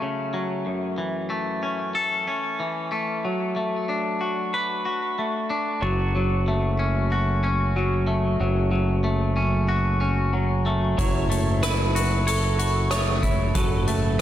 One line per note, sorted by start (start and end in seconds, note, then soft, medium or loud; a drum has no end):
0.00 0.66 C#3 soft
0.00 0.32 F#3 soft
0.00 1.29 A3 soft
0.00 0.66 C#4 medium
0.34 0.66 F#3 soft
0.66 2.28 F#2 soft
0.98 2.59 E3 soft
1.30 2.91 A3 soft
1.63 2.26 C#4 soft
1.95 4.53 A4 medium
2.28 3.24 C#4 soft
2.60 3.24 E3 soft
2.92 3.56 A3 soft
3.25 4.86 F#3 soft
3.56 5.17 A3 soft
3.89 5.49 D4 soft
4.21 4.84 F#4 soft
4.54 5.83 B4 medium
4.85 5.82 F#4 soft
5.19 5.83 A3 soft
5.50 5.83 D4 soft
5.82 8.36 F#1 medium
5.82 6.14 F#3 soft
5.82 10.94 F#4 soft
5.82 13.51 C#5 soft
5.82 14.21 A5 soft
5.82 13.51 C#6 soft
6.15 7.75 F#3 soft
6.48 8.07 A3 soft
6.79 7.43 C#4 soft
7.12 8.73 F#4 medium
7.44 9.36 C#4 soft
7.76 8.39 F#3 soft
8.07 9.03 A3 soft
8.40 10.94 F#1 medium
8.40 8.70 F#3 soft
8.71 10.32 F#3 soft
9.04 10.66 A3 soft
9.37 10.00 C#4 soft
9.69 10.98 F#4 medium
10.01 10.98 C#4 soft
10.33 10.97 F#3 medium
10.66 11.29 A3 medium
10.98 13.51 F#1 medium
10.98 12.59 F#3 medium
10.98 13.53 E4 medium
10.98 11.62 C#5 medium
10.98 kick medium
10.98 closed hi-hat medium
11.30 12.89 A3 medium
11.30 closed hi-hat soft
11.62 13.22 E4 medium
11.62 12.27 B4 medium
11.62 cross-stick medium
11.62 closed hi-hat medium
11.95 12.58 F#4 soft
11.95 closed hi-hat soft
12.27 12.91 A4 medium
12.27 13.55 C#5 medium
12.27 closed hi-hat medium
12.59 13.55 F#4 soft
12.59 closed hi-hat soft
12.91 13.55 A3 soft
12.91 13.55 C#5 medium
12.91 cross-stick medium
12.91 closed hi-hat medium
13.23 13.55 E4 soft
13.23 kick medium
13.23 closed hi-hat soft
13.55 14.21 F#1 medium
13.55 14.21 F#3 soft
13.55 14.21 F#4 medium
13.55 14.18 A4 medium
13.55 14.21 B4 soft
13.55 kick medium
13.55 closed hi-hat medium
13.87 14.21 A3 medium
13.87 closed hi-hat soft